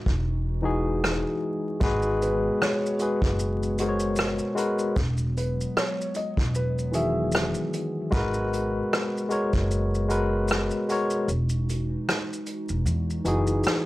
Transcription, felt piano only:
2.22 2.57 B4 medium
2.63 2.97 C#5 medium
3.02 3.75 B4 medium
3.80 4.15 G#4 medium
5.37 5.72 B4 medium
5.78 6.16 C#5 medium
6.16 6.51 D#5 medium
6.56 6.91 B4 medium
6.95 7.54 E5 medium

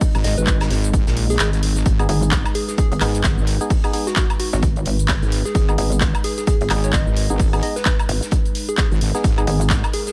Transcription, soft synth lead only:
0.24 0.35 D#5 medium
0.38 0.57 B4 medium
1.30 1.36 G#4 medium
1.40 1.48 G#4 medium
2.55 2.64 G#4 medium
2.68 2.75 G#4 medium
2.78 2.87 G#4 medium
2.92 2.98 G#4 medium
4.07 4.13 F#4 medium
4.17 4.25 F#4 medium
4.40 4.48 F#4 medium
4.53 4.59 F#4 medium
5.45 5.78 G#4 medium
6.24 6.33 G#4 medium
6.38 6.44 G#4 medium
6.47 6.56 G#4 medium
6.61 6.67 G#4 medium
6.84 6.92 C#5 medium
6.94 7.40 D#5 medium
7.63 7.74 D#5 medium
7.76 7.95 B4 medium
8.69 8.75 G#4 medium
8.78 8.87 G#4 medium
9.94 10.02 G#4 medium
10.07 10.12 G#4 medium

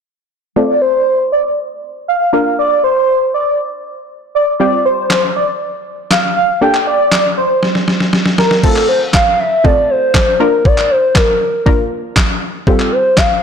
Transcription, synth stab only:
0.56 2.29 A3 medium
0.56 2.30 C4 medium
0.56 2.30 F4 medium
0.56 2.30 A4 medium
2.33 4.31 A#3 medium
2.33 4.31 D4 medium
2.33 4.31 F4 medium
2.33 4.31 A#4 medium
4.60 6.58 G3 medium
4.60 6.58 C4 medium
4.60 6.58 F4 medium
4.60 6.58 G4 medium
6.61 8.59 A#3 medium
6.61 8.59 D4 medium
6.61 8.60 G4 medium
6.61 8.60 A4 medium
8.63 9.40 A3 medium
8.63 9.40 C4 medium
8.63 9.40 F4 medium
8.63 9.40 A4 medium
9.64 10.40 A3 medium
9.64 10.40 C4 medium
9.64 10.39 F4 medium
9.64 10.40 A4 medium
10.40 11.21 A#3 medium
10.40 11.21 D4 medium
10.40 11.21 F4 medium
10.40 11.21 A#4 medium
11.66 12.42 A#3 medium
11.66 12.42 D4 medium
11.66 12.42 F4 medium
11.66 12.42 A#4 medium
12.67 13.43 G3 medium
12.67 13.43 C4 medium
12.67 13.43 F4 medium
12.67 13.43 G4 medium

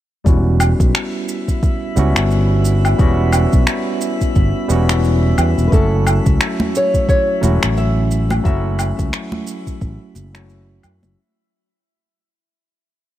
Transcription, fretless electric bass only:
0.26 0.73 E1 medium
0.80 0.91 B1 medium
1.97 2.12 C#2 loud
2.17 2.94 G1 medium
3.00 3.46 E1 medium
3.53 3.64 B1 medium
4.36 4.51 G1 medium
4.70 5.33 E1 medium
5.38 5.53 E2 loud
5.58 5.69 E1 medium
5.73 6.19 F#1 medium
6.27 6.37 C#2 medium
7.44 7.58 E1 loud
7.64 8.40 A1 medium
8.45 8.91 F#1 medium
8.99 9.10 C#2 medium
9.82 9.97 A1 loud
10.16 10.78 F#1 medium
10.84 10.99 F#2 loud
11.04 11.14 F#1 medium

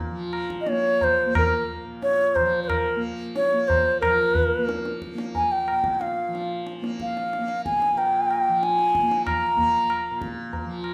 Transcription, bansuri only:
0.61 0.70 D#5 medium
0.69 1.05 C#5 loud
1.03 1.36 C5 medium
1.38 1.68 A#4 medium
2.03 2.37 C#5 loud
2.35 2.63 C5 medium
2.63 2.70 C5 medium
2.68 3.02 A#4 medium
3.36 3.69 C#5 loud
3.68 4.00 C5 loud
4.01 4.98 A#4 medium
5.36 5.53 G#5 medium
5.52 6.02 G5 medium
6.01 6.67 F5 medium
7.01 7.62 F5 medium
7.65 7.99 G#5 medium
7.98 8.65 G5 medium
8.63 9.25 G#5 medium
9.26 10.18 A#5 medium

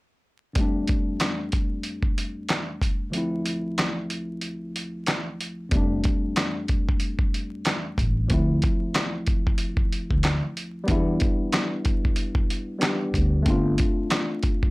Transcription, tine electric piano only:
0.53 3.09 F2 medium
0.53 3.10 G3 medium
0.53 3.11 A3 medium
0.59 3.12 C4 medium
0.59 3.12 D4 medium
3.10 5.66 D2 medium
3.10 5.67 F3 medium
3.10 5.68 A3 medium
3.16 5.69 C4 medium
3.16 5.70 E4 medium
5.69 8.25 F2 medium
5.69 8.26 G3 medium
5.69 8.27 A3 medium
5.75 8.28 C4 medium
5.75 8.28 D4 medium
8.26 10.82 D2 medium
8.26 10.83 F3 medium
8.26 10.84 A3 medium
8.32 10.85 C4 medium
8.32 10.86 E4 medium
10.84 12.76 G3 medium
10.84 12.77 B3 medium
10.89 12.78 D4 medium
10.89 12.79 E4 medium
12.78 13.44 G3 medium
12.78 13.45 B3 medium
12.78 13.46 D4 soft
12.78 13.46 G4 medium
13.43 14.71 A3 medium
13.43 14.71 C4 medium
13.48 14.71 D4 medium
13.48 14.71 F4 medium

